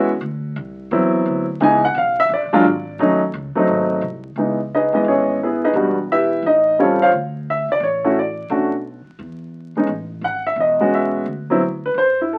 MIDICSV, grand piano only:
0, 0, Header, 1, 2, 480
1, 0, Start_track
1, 0, Key_signature, 4, "minor"
1, 0, Tempo, 345026
1, 319, Time_signature, 4, 2, 24, 8
1, 17224, End_track
2, 0, Start_track
2, 0, Title_t, "Grand piano"
2, 0, Program_c, 0, 0
2, 1274, Note_on_c, 0, 59, 66
2, 1275, Note_on_c, 0, 54, 69
2, 1286, Note_on_c, 0, 60, 64
2, 1291, Note_on_c, 0, 64, 79
2, 2006, Note_off_c, 0, 59, 0
2, 2007, Note_off_c, 0, 54, 0
2, 2012, Note_off_c, 0, 60, 0
2, 2015, Note_off_c, 0, 64, 0
2, 2235, Note_on_c, 0, 52, 67
2, 2238, Note_on_c, 0, 56, 60
2, 2243, Note_on_c, 0, 59, 59
2, 2254, Note_on_c, 0, 63, 77
2, 2274, Note_on_c, 0, 80, 82
2, 2518, Note_off_c, 0, 52, 0
2, 2520, Note_off_c, 0, 56, 0
2, 2522, Note_off_c, 0, 59, 0
2, 2528, Note_off_c, 0, 63, 0
2, 2560, Note_off_c, 0, 80, 0
2, 2569, Note_on_c, 0, 78, 91
2, 2722, Note_off_c, 0, 78, 0
2, 2752, Note_on_c, 0, 77, 75
2, 3039, Note_off_c, 0, 77, 0
2, 3057, Note_on_c, 0, 76, 103
2, 3206, Note_off_c, 0, 76, 0
2, 3249, Note_on_c, 0, 74, 80
2, 3515, Note_on_c, 0, 54, 85
2, 3522, Note_on_c, 0, 62, 87
2, 3524, Note_on_c, 0, 56, 77
2, 3531, Note_on_c, 0, 65, 93
2, 3663, Note_off_c, 0, 54, 0
2, 3666, Note_off_c, 0, 62, 0
2, 3667, Note_off_c, 0, 56, 0
2, 3670, Note_off_c, 0, 65, 0
2, 4127, Note_off_c, 0, 74, 0
2, 4165, Note_on_c, 0, 54, 70
2, 4170, Note_on_c, 0, 57, 56
2, 4176, Note_on_c, 0, 61, 66
2, 4180, Note_on_c, 0, 63, 78
2, 4442, Note_off_c, 0, 54, 0
2, 4444, Note_off_c, 0, 57, 0
2, 4447, Note_off_c, 0, 61, 0
2, 4449, Note_off_c, 0, 63, 0
2, 4944, Note_on_c, 0, 54, 69
2, 4953, Note_on_c, 0, 57, 67
2, 4960, Note_on_c, 0, 60, 61
2, 4970, Note_on_c, 0, 63, 72
2, 5560, Note_off_c, 0, 54, 0
2, 5564, Note_off_c, 0, 57, 0
2, 5568, Note_off_c, 0, 60, 0
2, 5572, Note_off_c, 0, 63, 0
2, 6086, Note_on_c, 0, 52, 48
2, 6093, Note_on_c, 0, 56, 43
2, 6101, Note_on_c, 0, 59, 49
2, 6103, Note_on_c, 0, 63, 53
2, 6362, Note_off_c, 0, 52, 0
2, 6366, Note_off_c, 0, 56, 0
2, 6370, Note_off_c, 0, 59, 0
2, 6371, Note_off_c, 0, 63, 0
2, 6602, Note_on_c, 0, 75, 69
2, 6605, Note_on_c, 0, 63, 55
2, 6605, Note_on_c, 0, 71, 55
2, 6610, Note_on_c, 0, 68, 52
2, 6865, Note_on_c, 0, 52, 63
2, 6869, Note_off_c, 0, 75, 0
2, 6875, Note_on_c, 0, 56, 54
2, 6877, Note_on_c, 0, 59, 59
2, 6890, Note_on_c, 0, 75, 67
2, 7028, Note_off_c, 0, 63, 0
2, 7028, Note_off_c, 0, 71, 0
2, 7031, Note_off_c, 0, 68, 0
2, 7069, Note_on_c, 0, 73, 69
2, 7070, Note_on_c, 0, 61, 50
2, 7075, Note_on_c, 0, 68, 56
2, 7076, Note_on_c, 0, 64, 50
2, 7481, Note_off_c, 0, 52, 0
2, 7486, Note_off_c, 0, 56, 0
2, 7487, Note_off_c, 0, 59, 0
2, 7493, Note_off_c, 0, 75, 0
2, 7500, Note_off_c, 0, 73, 0
2, 7501, Note_off_c, 0, 61, 0
2, 7503, Note_off_c, 0, 68, 0
2, 7504, Note_off_c, 0, 64, 0
2, 7556, Note_on_c, 0, 71, 58
2, 7558, Note_on_c, 0, 64, 47
2, 7563, Note_on_c, 0, 59, 57
2, 7570, Note_on_c, 0, 68, 57
2, 7831, Note_off_c, 0, 68, 0
2, 7832, Note_off_c, 0, 71, 0
2, 7841, Note_off_c, 0, 64, 0
2, 7844, Note_off_c, 0, 59, 0
2, 7851, Note_on_c, 0, 68, 65
2, 7853, Note_on_c, 0, 71, 69
2, 7856, Note_on_c, 0, 75, 75
2, 7857, Note_on_c, 0, 63, 66
2, 8002, Note_on_c, 0, 55, 62
2, 8003, Note_off_c, 0, 68, 0
2, 8003, Note_off_c, 0, 71, 0
2, 8005, Note_off_c, 0, 75, 0
2, 8006, Note_off_c, 0, 63, 0
2, 8007, Note_on_c, 0, 59, 55
2, 8013, Note_on_c, 0, 62, 47
2, 8017, Note_on_c, 0, 66, 63
2, 8281, Note_off_c, 0, 55, 0
2, 8283, Note_off_c, 0, 59, 0
2, 8286, Note_off_c, 0, 62, 0
2, 8288, Note_off_c, 0, 66, 0
2, 8510, Note_on_c, 0, 67, 62
2, 8513, Note_on_c, 0, 71, 57
2, 8513, Note_on_c, 0, 76, 88
2, 8515, Note_on_c, 0, 64, 65
2, 8941, Note_off_c, 0, 67, 0
2, 8942, Note_off_c, 0, 71, 0
2, 8942, Note_off_c, 0, 76, 0
2, 8943, Note_off_c, 0, 64, 0
2, 8992, Note_on_c, 0, 75, 75
2, 8994, Note_on_c, 0, 63, 61
2, 9422, Note_off_c, 0, 75, 0
2, 9423, Note_off_c, 0, 63, 0
2, 9446, Note_on_c, 0, 55, 59
2, 9448, Note_on_c, 0, 60, 50
2, 9453, Note_on_c, 0, 61, 52
2, 9461, Note_on_c, 0, 65, 61
2, 9466, Note_on_c, 0, 73, 69
2, 9468, Note_on_c, 0, 67, 52
2, 9475, Note_on_c, 0, 69, 56
2, 9723, Note_off_c, 0, 55, 0
2, 9724, Note_off_c, 0, 60, 0
2, 9726, Note_off_c, 0, 61, 0
2, 9730, Note_off_c, 0, 65, 0
2, 9749, Note_off_c, 0, 73, 0
2, 9756, Note_off_c, 0, 67, 0
2, 9760, Note_off_c, 0, 69, 0
2, 9768, Note_on_c, 0, 77, 85
2, 9770, Note_on_c, 0, 73, 67
2, 9774, Note_on_c, 0, 72, 72
2, 9777, Note_on_c, 0, 65, 65
2, 9863, Note_off_c, 0, 77, 0
2, 9864, Note_off_c, 0, 73, 0
2, 9867, Note_off_c, 0, 72, 0
2, 9869, Note_off_c, 0, 65, 0
2, 10436, Note_on_c, 0, 76, 75
2, 10720, Note_off_c, 0, 76, 0
2, 10736, Note_on_c, 0, 74, 92
2, 10885, Note_off_c, 0, 74, 0
2, 10899, Note_on_c, 0, 73, 72
2, 11191, Note_on_c, 0, 61, 56
2, 11192, Note_on_c, 0, 57, 73
2, 11198, Note_on_c, 0, 64, 61
2, 11210, Note_on_c, 0, 66, 68
2, 11335, Note_off_c, 0, 73, 0
2, 11340, Note_off_c, 0, 61, 0
2, 11341, Note_off_c, 0, 57, 0
2, 11344, Note_off_c, 0, 64, 0
2, 11350, Note_off_c, 0, 66, 0
2, 11394, Note_on_c, 0, 74, 74
2, 11822, Note_off_c, 0, 74, 0
2, 11829, Note_on_c, 0, 57, 56
2, 11834, Note_on_c, 0, 61, 46
2, 11840, Note_on_c, 0, 66, 64
2, 11845, Note_on_c, 0, 62, 47
2, 12113, Note_off_c, 0, 57, 0
2, 12116, Note_off_c, 0, 61, 0
2, 12119, Note_off_c, 0, 66, 0
2, 12122, Note_off_c, 0, 62, 0
2, 13587, Note_on_c, 0, 56, 54
2, 13592, Note_on_c, 0, 59, 46
2, 13601, Note_on_c, 0, 61, 45
2, 13603, Note_on_c, 0, 63, 61
2, 13737, Note_off_c, 0, 56, 0
2, 13740, Note_off_c, 0, 59, 0
2, 13744, Note_off_c, 0, 61, 0
2, 13746, Note_off_c, 0, 63, 0
2, 14250, Note_on_c, 0, 78, 84
2, 14546, Note_off_c, 0, 78, 0
2, 14560, Note_on_c, 0, 76, 74
2, 14716, Note_off_c, 0, 76, 0
2, 14752, Note_on_c, 0, 75, 68
2, 15031, Note_on_c, 0, 56, 62
2, 15038, Note_on_c, 0, 59, 59
2, 15040, Note_on_c, 0, 66, 72
2, 15041, Note_on_c, 0, 61, 60
2, 15180, Note_off_c, 0, 75, 0
2, 15226, Note_on_c, 0, 76, 67
2, 15643, Note_off_c, 0, 56, 0
2, 15646, Note_off_c, 0, 59, 0
2, 15647, Note_off_c, 0, 61, 0
2, 15647, Note_off_c, 0, 66, 0
2, 15657, Note_off_c, 0, 76, 0
2, 15998, Note_on_c, 0, 54, 63
2, 16001, Note_on_c, 0, 59, 57
2, 16014, Note_on_c, 0, 60, 61
2, 16018, Note_on_c, 0, 64, 72
2, 16143, Note_off_c, 0, 54, 0
2, 16144, Note_off_c, 0, 59, 0
2, 16151, Note_off_c, 0, 60, 0
2, 16153, Note_off_c, 0, 64, 0
2, 16494, Note_on_c, 0, 71, 79
2, 16643, Note_off_c, 0, 71, 0
2, 16665, Note_on_c, 0, 72, 89
2, 16953, Note_off_c, 0, 72, 0
2, 16991, Note_on_c, 0, 64, 60
2, 17132, Note_off_c, 0, 64, 0
2, 17156, Note_on_c, 0, 69, 64
2, 17224, Note_off_c, 0, 69, 0
2, 17224, End_track
0, 0, End_of_file